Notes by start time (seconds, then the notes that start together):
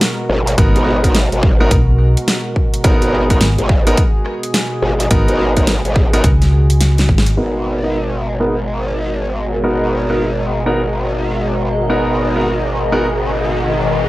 Already playing: B2 G#3 F#4 A#4
0.01 snare, closed hi-hat
0.29 G#1, cross-stick
0.47 closed hi-hat
0.58 G#1 B3 D#4 F#4 A#4, kick, closed hi-hat
0.76 G#1, closed hi-hat
1.04 B3 D#4 F#4 A#4, kick, closed hi-hat
1.15 snare, closed hi-hat
1.32 G#1, closed hi-hat
1.43 kick
1.60 B3 D#4 F#4 A#4, cross-stick
1.71 B1, kick, closed hi-hat
2.17 closed hi-hat
2.28 snare, closed hi-hat
2.56 kick
2.74 closed hi-hat
2.84 G#1 B3 D#4 F#4 G#4 A#4, kick, closed hi-hat
3.02 G#1, closed hi-hat
3.30 B3 D#4 F#4 A#4, kick, closed hi-hat
3.41 G#1, snare, closed hi-hat
3.58 G#1, closed hi-hat
3.69 kick
3.87 B3 D#4 F#4 A#4, closed hi-hat
3.97 kick, closed hi-hat
4.26 cross-stick
4.43 closed hi-hat
4.54 snare, closed hi-hat
4.82 G#1, cross-stick
5.00 closed hi-hat
5.11 G#1 B3 D#4 F#4 A#4, kick, closed hi-hat
5.28 G#1, closed hi-hat
5.57 B3 D#4 F#4 A#4, kick, closed hi-hat
5.67 snare, closed hi-hat
5.85 G#1, closed hi-hat
5.96 kick
6.13 B3 D#4 F#4 A#4, cross-stick, closed hi-hat
6.24 C#2, kick, closed hi-hat
6.42 snare, closed hi-hat
6.70 closed hi-hat
6.81 snare, closed hi-hat
6.98 snare, closed hi-hat
7.09 G#1, kick
7.18 snare
7.26 closed hi-hat
7.37 G#1 B2 G#3 B3 D#4 F#4 G#4 A#4
7.83 B3 D#4 F#4 A#4
7.99 D#5
8.39 B3 D#4 F#4 A#4 A#5
9.64 B3 D#4 F#4 A#4
10.10 B3 D#4 F#4 A#4
10.66 B3 D#4 F#4 A#4
11.90 B3 D#4 F#4 A#4, riser
12.36 B3 D#4 F#4 A#4
12.92 B3 D#4 F#4 A#4